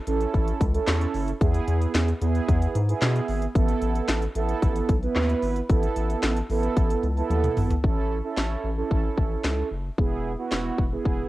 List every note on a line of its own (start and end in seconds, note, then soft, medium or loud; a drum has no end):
0.07 0.26 A1 loud
0.07 0.64 C#4 medium
0.07 0.64 E4 medium
0.07 0.64 A4 medium
0.07 closed hi-hat medium
0.20 closed hi-hat soft
0.34 0.53 A1 loud
0.34 kick medium
0.34 closed hi-hat medium
0.48 closed hi-hat medium
0.61 0.79 C#2 loud
0.61 kick medium
0.61 closed hi-hat medium
0.74 1.31 C#4 medium
0.74 1.31 E4 medium
0.74 1.31 A4 loud
0.74 closed hi-hat medium
0.88 1.06 E2 medium
0.88 snare loud
0.88 clap loud
0.88 closed hi-hat medium
1.01 closed hi-hat medium
1.14 1.33 F#1 medium
1.14 open hi-hat medium
1.28 closed hi-hat medium
1.41 1.60 E2 loud
1.41 2.10 B3 medium
1.41 2.10 E4 medium
1.41 2.10 G#4 loud
1.41 kick loud
1.41 closed hi-hat medium
1.54 closed hi-hat medium
1.68 1.87 E2 loud
1.68 closed hi-hat medium
1.82 closed hi-hat medium
1.95 2.13 E2 loud
1.95 snare loud
1.95 closed hi-hat medium
2.08 closed hi-hat medium
2.21 2.40 E2 medium
2.21 2.78 B3 medium
2.21 2.78 E4 medium
2.21 2.78 G#4 loud
2.21 closed hi-hat medium
2.35 closed hi-hat soft
2.48 2.67 E2 loud
2.48 kick loud
2.48 closed hi-hat medium
2.62 closed hi-hat medium
2.75 2.94 G#2 medium
2.75 closed hi-hat medium
2.88 3.45 B3 medium
2.88 3.45 E4 medium
2.88 3.45 G#4 loud
2.88 closed hi-hat medium
3.02 3.21 B2 loud
3.02 snare loud
3.02 clap loud
3.02 closed hi-hat medium
3.16 closed hi-hat medium
3.28 3.47 G#1 medium
3.28 open hi-hat medium
3.42 closed hi-hat medium
3.55 3.74 A1 loud
3.55 4.24 B3 medium
3.55 4.24 E4 medium
3.55 4.24 A4 loud
3.55 kick loud
3.55 closed hi-hat medium
3.69 closed hi-hat medium
3.82 4.01 A1 loud
3.82 closed hi-hat medium
3.96 closed hi-hat medium
4.09 4.28 A1 loud
4.09 snare loud
4.09 closed hi-hat medium
4.22 closed hi-hat medium
4.35 4.54 A1 loud
4.35 4.93 B3 medium
4.35 4.93 E4 medium
4.35 4.93 A4 loud
4.35 closed hi-hat medium
4.49 closed hi-hat medium
4.62 4.81 A1 loud
4.62 kick medium
4.62 closed hi-hat medium
4.76 closed hi-hat medium
4.89 5.08 B1 medium
4.89 kick medium
4.89 closed hi-hat medium
5.03 5.60 B3 medium
5.03 5.60 E4 medium
5.03 5.60 B4 medium
5.03 closed hi-hat medium
5.16 5.35 D#2 loud
5.16 snare loud
5.16 clap loud
5.16 closed hi-hat medium
5.29 closed hi-hat medium
5.42 5.61 G#1 medium
5.42 open hi-hat medium
5.56 closed hi-hat medium
5.69 5.88 A1 loud
5.69 6.38 B3 medium
5.69 6.38 E4 medium
5.69 6.38 A4 loud
5.69 kick loud
5.69 closed hi-hat medium
5.83 closed hi-hat medium
5.96 6.15 A1 loud
5.96 closed hi-hat medium
6.10 closed hi-hat medium
6.23 6.42 A1 loud
6.23 snare loud
6.23 closed hi-hat medium
6.36 closed hi-hat medium
6.50 6.69 A1 loud
6.50 7.07 B3 medium
6.50 7.07 E4 medium
6.50 7.07 A4 loud
6.50 open hi-hat medium
6.63 closed hi-hat soft
6.77 6.96 A1 loud
6.77 kick loud
6.77 closed hi-hat medium
6.90 closed hi-hat medium
7.03 7.22 C#2 medium
7.03 closed hi-hat medium
7.17 7.74 B3 medium
7.17 7.74 E4 medium
7.17 7.74 A4 loud
7.17 closed hi-hat medium
7.30 7.49 D#2 loud
7.30 closed hi-hat medium
7.30 high tom medium
7.44 closed hi-hat medium
7.44 mid tom medium
7.57 7.76 G#1 medium
7.57 mid tom medium
7.57 open hi-hat medium
7.70 closed hi-hat medium
7.70 floor tom medium
7.84 8.21 A1 loud
7.84 8.18 C#4 medium
7.84 8.18 E4 medium
7.84 8.18 A4 loud
7.84 kick loud
8.24 8.70 C#4 medium
8.24 8.70 E4 medium
8.24 8.70 A4 medium
8.37 8.56 A1 loud
8.37 snare loud
8.64 8.83 A1 medium
8.77 9.69 C#4 medium
8.77 9.69 E4 medium
8.77 9.69 A4 medium
8.91 9.10 A1 loud
8.91 kick medium
9.18 9.36 A1 loud
9.18 kick medium
9.44 9.63 C#2 medium
9.44 snare loud
9.71 9.90 F#1 medium
9.98 10.36 E1 loud
9.98 10.32 B3 medium
9.98 10.32 E4 medium
9.98 10.32 G#4 loud
9.98 kick loud
10.38 10.84 B3 medium
10.38 10.84 E4 medium
10.38 10.84 F#4 medium
10.52 10.71 E1 loud
10.52 snare loud
10.78 10.97 E1 loud
10.78 kick medium
10.92 11.29 B3 medium
10.92 11.29 E4 medium
10.92 11.29 G#4 medium
11.05 11.24 E1 loud
11.05 kick medium